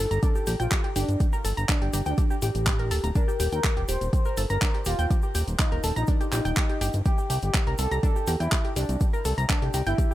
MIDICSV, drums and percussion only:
0, 0, Header, 1, 2, 480
1, 0, Start_track
1, 0, Tempo, 487805
1, 1184, Time_signature, 4, 2, 24, 8
1, 9978, End_track
2, 0, Start_track
2, 0, Title_t, "Drums"
2, 108, Note_on_c, 9, 42, 35
2, 112, Note_on_c, 9, 82, 39
2, 207, Note_off_c, 9, 42, 0
2, 211, Note_off_c, 9, 82, 0
2, 223, Note_on_c, 9, 42, 48
2, 224, Note_on_c, 9, 36, 124
2, 224, Note_on_c, 9, 82, 54
2, 322, Note_off_c, 9, 36, 0
2, 322, Note_off_c, 9, 42, 0
2, 322, Note_off_c, 9, 82, 0
2, 347, Note_on_c, 9, 82, 36
2, 446, Note_off_c, 9, 82, 0
2, 458, Note_on_c, 9, 82, 97
2, 463, Note_on_c, 9, 46, 101
2, 557, Note_off_c, 9, 82, 0
2, 562, Note_off_c, 9, 46, 0
2, 588, Note_on_c, 9, 42, 35
2, 599, Note_on_c, 9, 82, 40
2, 687, Note_off_c, 9, 42, 0
2, 697, Note_off_c, 9, 82, 0
2, 704, Note_on_c, 9, 36, 113
2, 704, Note_on_c, 9, 39, 121
2, 704, Note_on_c, 9, 42, 46
2, 707, Note_on_c, 9, 82, 56
2, 802, Note_off_c, 9, 36, 0
2, 802, Note_off_c, 9, 39, 0
2, 802, Note_off_c, 9, 42, 0
2, 805, Note_off_c, 9, 82, 0
2, 828, Note_on_c, 9, 42, 31
2, 927, Note_off_c, 9, 42, 0
2, 943, Note_on_c, 9, 46, 93
2, 947, Note_on_c, 9, 82, 91
2, 1041, Note_off_c, 9, 46, 0
2, 1045, Note_off_c, 9, 82, 0
2, 1068, Note_on_c, 9, 42, 36
2, 1078, Note_on_c, 9, 82, 39
2, 1167, Note_off_c, 9, 42, 0
2, 1177, Note_off_c, 9, 82, 0
2, 1183, Note_on_c, 9, 42, 46
2, 1183, Note_on_c, 9, 82, 51
2, 1184, Note_on_c, 9, 36, 125
2, 1281, Note_off_c, 9, 82, 0
2, 1282, Note_off_c, 9, 36, 0
2, 1282, Note_off_c, 9, 42, 0
2, 1307, Note_on_c, 9, 82, 41
2, 1405, Note_off_c, 9, 82, 0
2, 1423, Note_on_c, 9, 46, 107
2, 1426, Note_on_c, 9, 82, 98
2, 1521, Note_off_c, 9, 46, 0
2, 1525, Note_off_c, 9, 82, 0
2, 1548, Note_on_c, 9, 42, 34
2, 1550, Note_on_c, 9, 82, 42
2, 1647, Note_off_c, 9, 42, 0
2, 1649, Note_off_c, 9, 82, 0
2, 1663, Note_on_c, 9, 39, 122
2, 1663, Note_on_c, 9, 42, 44
2, 1664, Note_on_c, 9, 36, 127
2, 1665, Note_on_c, 9, 82, 51
2, 1762, Note_off_c, 9, 36, 0
2, 1762, Note_off_c, 9, 39, 0
2, 1762, Note_off_c, 9, 42, 0
2, 1764, Note_off_c, 9, 82, 0
2, 1789, Note_on_c, 9, 42, 32
2, 1887, Note_off_c, 9, 42, 0
2, 1902, Note_on_c, 9, 82, 104
2, 1904, Note_on_c, 9, 46, 95
2, 2001, Note_off_c, 9, 82, 0
2, 2002, Note_off_c, 9, 46, 0
2, 2024, Note_on_c, 9, 82, 37
2, 2029, Note_on_c, 9, 42, 32
2, 2123, Note_off_c, 9, 82, 0
2, 2127, Note_off_c, 9, 42, 0
2, 2143, Note_on_c, 9, 82, 53
2, 2144, Note_on_c, 9, 36, 127
2, 2144, Note_on_c, 9, 42, 46
2, 2241, Note_off_c, 9, 82, 0
2, 2242, Note_off_c, 9, 36, 0
2, 2242, Note_off_c, 9, 42, 0
2, 2266, Note_on_c, 9, 82, 38
2, 2365, Note_off_c, 9, 82, 0
2, 2381, Note_on_c, 9, 82, 101
2, 2384, Note_on_c, 9, 46, 108
2, 2480, Note_off_c, 9, 82, 0
2, 2482, Note_off_c, 9, 46, 0
2, 2508, Note_on_c, 9, 42, 35
2, 2509, Note_on_c, 9, 82, 36
2, 2607, Note_off_c, 9, 42, 0
2, 2607, Note_off_c, 9, 82, 0
2, 2620, Note_on_c, 9, 82, 50
2, 2624, Note_on_c, 9, 36, 120
2, 2624, Note_on_c, 9, 39, 126
2, 2624, Note_on_c, 9, 42, 45
2, 2718, Note_off_c, 9, 82, 0
2, 2722, Note_off_c, 9, 36, 0
2, 2722, Note_off_c, 9, 39, 0
2, 2722, Note_off_c, 9, 42, 0
2, 2749, Note_on_c, 9, 42, 33
2, 2847, Note_off_c, 9, 42, 0
2, 2864, Note_on_c, 9, 46, 102
2, 2866, Note_on_c, 9, 82, 85
2, 2962, Note_off_c, 9, 46, 0
2, 2964, Note_off_c, 9, 82, 0
2, 2987, Note_on_c, 9, 82, 39
2, 2989, Note_on_c, 9, 42, 35
2, 3086, Note_off_c, 9, 82, 0
2, 3087, Note_off_c, 9, 42, 0
2, 3101, Note_on_c, 9, 82, 51
2, 3104, Note_on_c, 9, 36, 124
2, 3104, Note_on_c, 9, 42, 44
2, 3200, Note_off_c, 9, 82, 0
2, 3202, Note_off_c, 9, 36, 0
2, 3202, Note_off_c, 9, 42, 0
2, 3234, Note_on_c, 9, 82, 41
2, 3333, Note_off_c, 9, 82, 0
2, 3344, Note_on_c, 9, 46, 117
2, 3345, Note_on_c, 9, 82, 94
2, 3442, Note_off_c, 9, 46, 0
2, 3444, Note_off_c, 9, 82, 0
2, 3464, Note_on_c, 9, 82, 43
2, 3469, Note_on_c, 9, 42, 33
2, 3562, Note_off_c, 9, 82, 0
2, 3567, Note_off_c, 9, 42, 0
2, 3580, Note_on_c, 9, 82, 53
2, 3584, Note_on_c, 9, 36, 123
2, 3584, Note_on_c, 9, 39, 121
2, 3584, Note_on_c, 9, 42, 44
2, 3678, Note_off_c, 9, 82, 0
2, 3682, Note_off_c, 9, 36, 0
2, 3682, Note_off_c, 9, 39, 0
2, 3682, Note_off_c, 9, 42, 0
2, 3709, Note_on_c, 9, 42, 30
2, 3807, Note_off_c, 9, 42, 0
2, 3820, Note_on_c, 9, 82, 94
2, 3824, Note_on_c, 9, 46, 97
2, 3919, Note_off_c, 9, 82, 0
2, 3922, Note_off_c, 9, 46, 0
2, 3949, Note_on_c, 9, 42, 32
2, 3952, Note_on_c, 9, 82, 38
2, 4047, Note_off_c, 9, 42, 0
2, 4050, Note_off_c, 9, 82, 0
2, 4064, Note_on_c, 9, 36, 120
2, 4064, Note_on_c, 9, 42, 42
2, 4073, Note_on_c, 9, 82, 54
2, 4162, Note_off_c, 9, 36, 0
2, 4162, Note_off_c, 9, 42, 0
2, 4171, Note_off_c, 9, 82, 0
2, 4181, Note_on_c, 9, 82, 35
2, 4280, Note_off_c, 9, 82, 0
2, 4302, Note_on_c, 9, 82, 98
2, 4304, Note_on_c, 9, 46, 114
2, 4400, Note_off_c, 9, 82, 0
2, 4402, Note_off_c, 9, 46, 0
2, 4424, Note_on_c, 9, 82, 46
2, 4429, Note_on_c, 9, 42, 33
2, 4523, Note_off_c, 9, 82, 0
2, 4527, Note_off_c, 9, 42, 0
2, 4544, Note_on_c, 9, 36, 124
2, 4544, Note_on_c, 9, 39, 120
2, 4544, Note_on_c, 9, 42, 43
2, 4544, Note_on_c, 9, 82, 53
2, 4642, Note_off_c, 9, 36, 0
2, 4642, Note_off_c, 9, 82, 0
2, 4643, Note_off_c, 9, 39, 0
2, 4643, Note_off_c, 9, 42, 0
2, 4669, Note_on_c, 9, 42, 30
2, 4767, Note_off_c, 9, 42, 0
2, 4773, Note_on_c, 9, 82, 100
2, 4784, Note_on_c, 9, 46, 102
2, 4872, Note_off_c, 9, 82, 0
2, 4882, Note_off_c, 9, 46, 0
2, 4909, Note_on_c, 9, 42, 33
2, 4911, Note_on_c, 9, 82, 41
2, 5007, Note_off_c, 9, 42, 0
2, 5010, Note_off_c, 9, 82, 0
2, 5024, Note_on_c, 9, 36, 124
2, 5024, Note_on_c, 9, 42, 43
2, 5025, Note_on_c, 9, 82, 53
2, 5122, Note_off_c, 9, 36, 0
2, 5122, Note_off_c, 9, 42, 0
2, 5123, Note_off_c, 9, 82, 0
2, 5137, Note_on_c, 9, 82, 35
2, 5236, Note_off_c, 9, 82, 0
2, 5263, Note_on_c, 9, 46, 112
2, 5264, Note_on_c, 9, 82, 105
2, 5362, Note_off_c, 9, 46, 0
2, 5362, Note_off_c, 9, 82, 0
2, 5388, Note_on_c, 9, 42, 31
2, 5391, Note_on_c, 9, 82, 40
2, 5486, Note_off_c, 9, 42, 0
2, 5490, Note_off_c, 9, 82, 0
2, 5504, Note_on_c, 9, 36, 124
2, 5504, Note_on_c, 9, 39, 113
2, 5504, Note_on_c, 9, 42, 41
2, 5509, Note_on_c, 9, 82, 52
2, 5602, Note_off_c, 9, 36, 0
2, 5602, Note_off_c, 9, 39, 0
2, 5602, Note_off_c, 9, 42, 0
2, 5608, Note_off_c, 9, 82, 0
2, 5629, Note_on_c, 9, 42, 31
2, 5727, Note_off_c, 9, 42, 0
2, 5741, Note_on_c, 9, 82, 92
2, 5743, Note_on_c, 9, 46, 96
2, 5839, Note_off_c, 9, 82, 0
2, 5842, Note_off_c, 9, 46, 0
2, 5868, Note_on_c, 9, 42, 32
2, 5872, Note_on_c, 9, 82, 41
2, 5966, Note_off_c, 9, 42, 0
2, 5971, Note_off_c, 9, 82, 0
2, 5973, Note_on_c, 9, 82, 50
2, 5983, Note_on_c, 9, 42, 41
2, 5984, Note_on_c, 9, 36, 120
2, 6071, Note_off_c, 9, 82, 0
2, 6082, Note_off_c, 9, 36, 0
2, 6082, Note_off_c, 9, 42, 0
2, 6108, Note_on_c, 9, 42, 30
2, 6110, Note_on_c, 9, 82, 34
2, 6206, Note_off_c, 9, 42, 0
2, 6209, Note_off_c, 9, 82, 0
2, 6220, Note_on_c, 9, 82, 99
2, 6223, Note_on_c, 9, 39, 58
2, 6223, Note_on_c, 9, 46, 110
2, 6319, Note_off_c, 9, 82, 0
2, 6321, Note_off_c, 9, 39, 0
2, 6321, Note_off_c, 9, 46, 0
2, 6348, Note_on_c, 9, 42, 32
2, 6349, Note_on_c, 9, 82, 45
2, 6446, Note_off_c, 9, 42, 0
2, 6447, Note_off_c, 9, 82, 0
2, 6457, Note_on_c, 9, 82, 48
2, 6463, Note_on_c, 9, 39, 124
2, 6463, Note_on_c, 9, 42, 43
2, 6464, Note_on_c, 9, 36, 125
2, 6556, Note_off_c, 9, 82, 0
2, 6562, Note_off_c, 9, 36, 0
2, 6562, Note_off_c, 9, 39, 0
2, 6562, Note_off_c, 9, 42, 0
2, 6588, Note_on_c, 9, 42, 29
2, 6686, Note_off_c, 9, 42, 0
2, 6703, Note_on_c, 9, 46, 100
2, 6710, Note_on_c, 9, 82, 89
2, 6801, Note_off_c, 9, 46, 0
2, 6809, Note_off_c, 9, 82, 0
2, 6819, Note_on_c, 9, 82, 44
2, 6828, Note_on_c, 9, 42, 33
2, 6918, Note_off_c, 9, 82, 0
2, 6926, Note_off_c, 9, 42, 0
2, 6942, Note_on_c, 9, 82, 47
2, 6943, Note_on_c, 9, 36, 119
2, 6943, Note_on_c, 9, 42, 42
2, 7040, Note_off_c, 9, 82, 0
2, 7041, Note_off_c, 9, 42, 0
2, 7042, Note_off_c, 9, 36, 0
2, 7065, Note_on_c, 9, 82, 37
2, 7164, Note_off_c, 9, 82, 0
2, 7183, Note_on_c, 9, 46, 108
2, 7188, Note_on_c, 9, 82, 86
2, 7281, Note_off_c, 9, 46, 0
2, 7286, Note_off_c, 9, 82, 0
2, 7302, Note_on_c, 9, 82, 41
2, 7307, Note_on_c, 9, 42, 31
2, 7400, Note_off_c, 9, 82, 0
2, 7406, Note_off_c, 9, 42, 0
2, 7421, Note_on_c, 9, 82, 58
2, 7423, Note_on_c, 9, 36, 115
2, 7423, Note_on_c, 9, 39, 111
2, 7423, Note_on_c, 9, 42, 44
2, 7519, Note_off_c, 9, 82, 0
2, 7521, Note_off_c, 9, 39, 0
2, 7521, Note_off_c, 9, 42, 0
2, 7522, Note_off_c, 9, 36, 0
2, 7547, Note_on_c, 9, 42, 30
2, 7646, Note_off_c, 9, 42, 0
2, 7657, Note_on_c, 9, 82, 88
2, 7663, Note_on_c, 9, 46, 95
2, 7755, Note_off_c, 9, 82, 0
2, 7761, Note_off_c, 9, 46, 0
2, 7787, Note_on_c, 9, 42, 31
2, 7790, Note_on_c, 9, 82, 37
2, 7886, Note_off_c, 9, 42, 0
2, 7888, Note_off_c, 9, 82, 0
2, 7903, Note_on_c, 9, 36, 116
2, 7903, Note_on_c, 9, 42, 43
2, 7910, Note_on_c, 9, 82, 48
2, 8001, Note_off_c, 9, 42, 0
2, 8002, Note_off_c, 9, 36, 0
2, 8008, Note_off_c, 9, 82, 0
2, 8029, Note_on_c, 9, 82, 36
2, 8127, Note_off_c, 9, 82, 0
2, 8138, Note_on_c, 9, 82, 92
2, 8143, Note_on_c, 9, 46, 110
2, 8236, Note_off_c, 9, 82, 0
2, 8241, Note_off_c, 9, 46, 0
2, 8268, Note_on_c, 9, 42, 33
2, 8278, Note_on_c, 9, 82, 37
2, 8366, Note_off_c, 9, 42, 0
2, 8377, Note_off_c, 9, 82, 0
2, 8383, Note_on_c, 9, 36, 112
2, 8383, Note_on_c, 9, 39, 117
2, 8383, Note_on_c, 9, 42, 42
2, 8385, Note_on_c, 9, 82, 49
2, 8482, Note_off_c, 9, 36, 0
2, 8482, Note_off_c, 9, 39, 0
2, 8482, Note_off_c, 9, 42, 0
2, 8483, Note_off_c, 9, 82, 0
2, 8508, Note_on_c, 9, 42, 29
2, 8606, Note_off_c, 9, 42, 0
2, 8623, Note_on_c, 9, 46, 98
2, 8625, Note_on_c, 9, 82, 106
2, 8721, Note_off_c, 9, 46, 0
2, 8724, Note_off_c, 9, 82, 0
2, 8748, Note_on_c, 9, 42, 34
2, 8751, Note_on_c, 9, 82, 42
2, 8846, Note_off_c, 9, 42, 0
2, 8849, Note_off_c, 9, 82, 0
2, 8861, Note_on_c, 9, 82, 54
2, 8863, Note_on_c, 9, 36, 112
2, 8863, Note_on_c, 9, 42, 44
2, 8959, Note_off_c, 9, 82, 0
2, 8962, Note_off_c, 9, 36, 0
2, 8962, Note_off_c, 9, 42, 0
2, 8988, Note_on_c, 9, 82, 37
2, 9087, Note_off_c, 9, 82, 0
2, 9102, Note_on_c, 9, 82, 81
2, 9103, Note_on_c, 9, 46, 104
2, 9200, Note_off_c, 9, 82, 0
2, 9201, Note_off_c, 9, 46, 0
2, 9228, Note_on_c, 9, 42, 33
2, 9233, Note_on_c, 9, 82, 38
2, 9327, Note_off_c, 9, 42, 0
2, 9331, Note_off_c, 9, 82, 0
2, 9343, Note_on_c, 9, 36, 113
2, 9344, Note_on_c, 9, 39, 110
2, 9344, Note_on_c, 9, 42, 42
2, 9344, Note_on_c, 9, 82, 51
2, 9442, Note_off_c, 9, 36, 0
2, 9442, Note_off_c, 9, 39, 0
2, 9442, Note_off_c, 9, 42, 0
2, 9442, Note_off_c, 9, 82, 0
2, 9468, Note_on_c, 9, 42, 31
2, 9567, Note_off_c, 9, 42, 0
2, 9580, Note_on_c, 9, 82, 90
2, 9583, Note_on_c, 9, 46, 91
2, 9678, Note_off_c, 9, 82, 0
2, 9681, Note_off_c, 9, 46, 0
2, 9705, Note_on_c, 9, 82, 35
2, 9708, Note_on_c, 9, 42, 33
2, 9803, Note_off_c, 9, 82, 0
2, 9806, Note_off_c, 9, 42, 0
2, 9823, Note_on_c, 9, 36, 115
2, 9823, Note_on_c, 9, 42, 45
2, 9829, Note_on_c, 9, 82, 49
2, 9921, Note_off_c, 9, 42, 0
2, 9922, Note_off_c, 9, 36, 0
2, 9927, Note_off_c, 9, 82, 0
2, 9978, End_track
0, 0, End_of_file